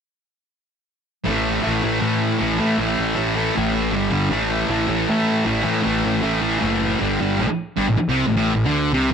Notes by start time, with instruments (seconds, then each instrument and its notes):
1.24 picked electric bass A1, distorted electric guitar A2 E3 A3
1.62 distorted electric guitar A2 E3 A3
1.67 picked electric bass A1
1.83 picked electric bass A1, distorted electric guitar A2 E3 A3
2.00 distorted electric guitar A2 E3 A3, picked electric bass A2
2.39 picked electric bass A1, distorted electric guitar A2 E3 A3
2.59 distorted electric guitar A2 E3 A3, picked electric bass A2
2.78 picked electric bass A1, distorted electric guitar A2 E3 A3
2.99 picked electric bass A1
3.15 picked electric bass A1, distorted electric guitar A2 E3 A3
3.35 distorted electric guitar A2 E3 A3
3.55 picked electric bass A1, distorted electric guitar A2 E3 A3
3.92 distorted electric guitar G2 D3 G3
3.96 picked electric bass G1
4.10 picked electric bass G1, distorted electric guitar G2 D3 G3
4.30 picked electric bass A1, distorted electric guitar A2 E3 A3
4.69 picked electric bass A1, distorted electric guitar A2 E3 A3
4.88 picked electric bass A1, distorted electric guitar A2 E3 A3
5.09 distorted electric guitar A2 E3 A3, picked electric bass A2
5.45 picked electric bass A1, distorted electric guitar A2 E3 A3
5.62 distorted electric guitar A2 E3 A3
5.66 picked electric bass A2
5.82 picked electric bass A1, distorted electric guitar A2 E3 A3
6.06 picked electric bass A1
6.23 picked electric bass A1, distorted electric guitar A2 E3 A3
6.42 distorted electric guitar A2 E3 A3
6.59 picked electric bass F#1, distorted electric guitar A2 E3 A3
6.99 picked electric bass G1, distorted electric guitar G2 D3 G3
7.19 picked electric bass G1, distorted electric guitar G2 D3 G3
7.38 picked electric bass A1, distorted electric guitar A2
7.47 muted distorted electric guitar stroke, muted picked electric bass stroke
7.77 picked electric bass G1, distorted electric guitar G2
7.88 picked electric bass A1, distorted electric guitar A2
7.97 muted distorted electric guitar stroke, muted picked electric bass stroke
8.08 picked electric bass C2, distorted electric guitar C3
8.27 picked electric bass A1, distorted electric guitar A2
8.34 picked electric bass A1, distorted electric guitar A2
8.54 picked electric bass A1, distorted electric guitar A2
8.65 picked electric bass D2, distorted electric guitar D3
8.93 picked electric bass C2, distorted electric guitar C3